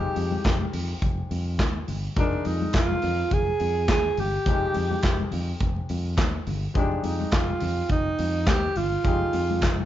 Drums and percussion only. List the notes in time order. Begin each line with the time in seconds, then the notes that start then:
0.03 muted conga
0.15 open hi-hat, high conga
0.32 high conga
0.44 kick, snare, clap, closed hi-hat
0.62 high conga
0.73 open hi-hat, low conga
1.02 kick, closed hi-hat, muted conga, low conga
1.18 muted conga
1.31 open hi-hat, high conga
1.59 kick, snare, clap, closed hi-hat, high conga
1.88 open hi-hat, high conga, low conga
2.16 kick, closed hi-hat, muted conga
2.33 muted conga
2.45 open hi-hat, high conga
2.62 high conga
2.73 kick, snare, clap, closed hi-hat
2.92 muted conga, high conga
3.02 open hi-hat, low conga
3.31 kick, closed hi-hat, muted conga, low conga
3.47 muted conga
3.60 open hi-hat, high conga
3.89 kick, snare, clap, closed hi-hat, muted conga, high conga
4.17 open hi-hat, high conga, low conga
4.46 kick, closed hi-hat, muted conga
4.74 open hi-hat, high conga
4.91 high conga
5.03 kick, snare, clap, closed hi-hat
5.20 high conga
5.31 open hi-hat, low conga
5.60 kick, closed hi-hat, low conga
5.76 muted conga
5.89 open hi-hat, high conga
6.18 kick, snare, clap, closed hi-hat, muted conga, high conga
6.47 open hi-hat, high conga, low conga
6.75 kick, closed hi-hat
6.92 muted conga
7.03 open hi-hat, high conga
7.21 high conga
7.31 kick, snare, clap, closed hi-hat
7.50 high conga
7.60 open hi-hat, low conga
7.89 kick, closed hi-hat, muted conga, low conga
8.06 muted conga
8.19 open hi-hat, high conga
8.47 kick, snare, clap, closed hi-hat, high conga
8.65 muted conga
8.76 open hi-hat, high conga, low conga
9.05 kick, closed hi-hat
9.21 muted conga
9.33 open hi-hat, high conga
9.51 high conga
9.62 kick, snare, clap, closed hi-hat
9.80 muted conga, high conga